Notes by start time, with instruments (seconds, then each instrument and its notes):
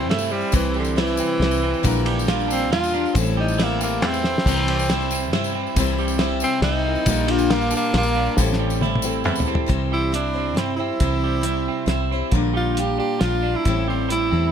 Already playing: clean electric guitar C3 G3, steel-string acoustic guitar C4 E4 C5, upright piano E4 G4 C5
0.08 fingered electric bass G2, steel-string acoustic guitar G3 C4 E4, tenor saxophone A3, snare, ride
0.12 steel-string acoustic guitar C5
0.19 tambourine
0.32 tenor saxophone G3, clean electric guitar C4
0.41 tambourine
0.52 fingered electric bass C2, steel-string acoustic guitar C3 E3 G3 C4 E4 C5, tenor saxophone E3, kick, ride, tambourine
0.74 clean electric guitar G3, tambourine
0.79 tenor saxophone D3
0.85 tambourine
0.96 tenor saxophone E3, steel-string acoustic guitar G3 C4 E4 C5, snare, ride, tambourine
1.07 tambourine
1.17 clean electric guitar C4, tambourine
1.40 fingered electric bass C2, steel-string acoustic guitar G3 C4 E4, snare, ride
1.44 steel-string acoustic guitar C5
1.51 tambourine
1.63 clean electric guitar C4
1.74 tambourine
1.83 fingered electric bass A#1, steel-string acoustic guitar A#2 D3 G3 D4 A#4, upright piano D4 G4 A#4, kick, ride, tambourine
2.06 clean electric guitar G3, ride, tambourine
2.19 tambourine
2.28 steel-string acoustic guitar G3 D4 F4 A#4, snare, ride
2.40 tambourine
2.48 tenor saxophone C4, clean electric guitar D4, tambourine
2.71 fingered electric bass E2, steel-string acoustic guitar G3 D4 F4 A#4, tenor saxophone F4, snare, ride
2.84 tambourine
2.92 steel-string acoustic guitar G3 D4 F4 A#4
3.06 tambourine
3.14 fingered electric bass A1, steel-string acoustic guitar A2 E3 G3 C4 E4, upright piano C4 G4 A4, kick, ride, tambourine
3.18 steel-string acoustic guitar A4
3.37 clean electric guitar G3, tenor saxophone D#4
3.48 tambourine
3.59 steel-string acoustic guitar G3 C4 E4 A4, snare, ride
3.64 tenor saxophone A#3
3.80 steel-string acoustic guitar G3 C4 E4 A4, tenor saxophone A#3, tambourine
4.01 fingered electric bass E2, steel-string acoustic guitar G3 C4 E4 A4, snare, ride
4.07 tenor saxophone C4
4.14 tambourine
4.24 clean electric guitar C4, snare, tambourine
4.38 snare
4.45 fingered electric bass C2, steel-string acoustic guitar C3 E3 G3 C4 E4, upright piano E4 G4 C5, kick, tambourine, splash, crash
4.49 steel-string acoustic guitar C5
4.68 clean electric guitar G3, ride, tambourine
4.79 tambourine
4.90 steel-string acoustic guitar G3 C4 E4 C5, snare, ride, tambourine
5.01 tambourine
5.11 clean electric guitar C4, tambourine
5.32 fingered electric bass G2, steel-string acoustic guitar G3 C4 E4 C5, snare, ride
5.44 tambourine
5.55 clean electric guitar C4
5.67 tambourine
5.76 fingered electric bass C2, steel-string acoustic guitar C3 E3 G3 C4 E4, kick, ride, tambourine
5.80 steel-string acoustic guitar C5
5.98 clean electric guitar G3, tambourine
6.08 tambourine
6.18 steel-string acoustic guitar G3 C4, snare, ride, tambourine
6.23 steel-string acoustic guitar E4 C5
6.40 clean electric guitar C4, tenor saxophone C4, tambourine
6.62 fingered electric bass C2, steel-string acoustic guitar G3, tenor saxophone D#4, clean electric guitar E4, snare, ride
6.66 steel-string acoustic guitar C4 C5
6.85 clean electric guitar C4, upright piano E4 G4 A#4
6.95 tambourine
7.06 fingered electric bass A#1, steel-string acoustic guitar A#2 D3 G3 D4 F4, upright piano D4 G4 A#4, kick, ride, tambourine
7.10 steel-string acoustic guitar A#4
7.27 clean electric guitar G3, tenor saxophone F4, ride, tambourine
7.39 tambourine
7.50 steel-string acoustic guitar G3 D4, tenor saxophone A#3, clean electric guitar F4, snare, ride, tambourine
7.54 steel-string acoustic guitar F4 A#4
7.61 tambourine
7.71 clean electric guitar D4, upright piano D4 G4 A#4, tambourine
7.77 tenor saxophone A#3
7.94 fingered electric bass A#1, steel-string acoustic guitar G3 D4 F4, tenor saxophone A#3, snare, ride
7.99 steel-string acoustic guitar A#4
8.03 tambourine
8.16 clean electric guitar D4
8.26 tambourine
8.37 fingered electric bass A1, steel-string acoustic guitar A2 E3 G3 C4 E4 A4, upright piano C4 G4 A4, kick, snare, tambourine
8.53 snare
8.59 clean electric guitar G3
8.70 tambourine
8.81 steel-string acoustic guitar G3 C4 E4 A4, high tom
8.95 mid tom
9.02 clean electric guitar C4, upright piano C4 G4 A4, tambourine
9.14 tambourine
9.24 fingered electric bass E2, steel-string acoustic guitar G3 C4 E4 A4, mid tom
9.36 tambourine
9.40 floor tom
9.45 steel-string acoustic guitar G3 C4 E4 A4, tambourine
9.55 floor tom
9.66 fingered electric bass C2, steel-string acoustic guitar C3 E3 G3 C4 E4 C5, kick, closed hi-hat
9.92 clean electric guitar G3, tenor saxophone E4
10.12 steel-string acoustic guitar G3 C4 E4 C5, tenor saxophone D4, closed hi-hat
10.33 steel-string acoustic guitar G3 C4 E4 C5
10.55 fingered electric bass G2, steel-string acoustic guitar G3 C4 E4, tenor saxophone C4, snare, closed hi-hat
10.59 steel-string acoustic guitar C5
10.77 steel-string acoustic guitar G3 C4 E4 C5, tenor saxophone E4
11.00 fingered electric bass C2, steel-string acoustic guitar C3 E3 G3 C4 E4 C5, kick, closed hi-hat
11.24 clean electric guitar G3
11.41 steel-string acoustic guitar G3 C4 E4 C5, closed hi-hat
11.68 clean electric guitar C4
11.86 fingered electric bass C2, steel-string acoustic guitar G3 C4 E4 C5, snare, closed hi-hat
12.12 steel-string acoustic guitar G3 C4 E4 C5
12.32 fingered electric bass A#1, steel-string acoustic guitar A#2 D3 G3 D4 F4 A#4, kick, closed hi-hat
12.54 clean electric guitar G3, tenor saxophone F4
12.77 steel-string acoustic guitar G3 D4 F4 A#4, tenor saxophone G4, closed hi-hat
12.98 clean electric guitar D4, tenor saxophone G4
13.19 fingered electric bass A#1, steel-string acoustic guitar G3 D4, clean electric guitar F4, tenor saxophone F4, snare, closed hi-hat
13.24 steel-string acoustic guitar F4 A#4
13.43 clean electric guitar D4
13.56 tenor saxophone E4
13.65 fingered electric bass A1, steel-string acoustic guitar A2 E3 G3 C4 E4 A4, kick, closed hi-hat
13.88 clean electric guitar G3, tenor saxophone C4
14.10 steel-string acoustic guitar G3 C4 E4 A4, tenor saxophone E4, closed hi-hat
14.32 fingered electric bass E2, steel-string acoustic guitar G3 C4 E4 A4